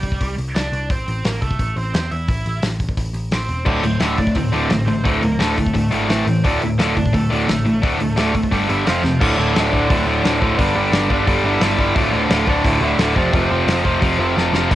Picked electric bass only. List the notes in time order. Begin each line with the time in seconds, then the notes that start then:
Already playing: C2
0.21 C2
0.38 C2
0.55 C2
0.72 C2
0.90 A1
1.08 A1
1.25 A1
1.42 C2
1.59 A1
1.76 A1
1.94 E2
2.11 E2
2.28 A1
2.46 A1
2.63 A1
2.97 A1
3.13 A1
3.31 A1
3.49 E1
3.66 D1
3.83 D1
4.00 D1
4.18 F1
4.36 D1
4.54 D1
4.70 A1
4.87 A1
5.05 D1
5.22 D1
5.39 D1
5.74 D1
5.92 G#1
6.09 A1
6.26 A2
6.45 D1
6.62 D1
6.79 D1
6.96 F1
7.14 D1
7.30 D1
7.48 A1
7.65 A1
7.83 D1
7.99 D1
8.17 D1
8.52 G1
8.69 G1
8.87 F1
9.04 F2
9.21 D1
9.37 D1
9.55 D1
9.72 D1
9.90 D1
10.06 D1
10.24 D1
10.42 D1
10.58 G1
10.76 G1
10.92 G1
11.10 G1
11.27 G1
11.44 G1
11.61 G1
11.78 G1
11.96 D1
12.13 D1
12.30 D1
12.48 D1
12.65 D1
12.81 D1
12.97 D1
13.16 F1
13.34 F1
13.49 F1
13.67 F1
13.85 F1
14.02 F1
14.19 F1
14.37 F1
14.53 F1
14.71 D1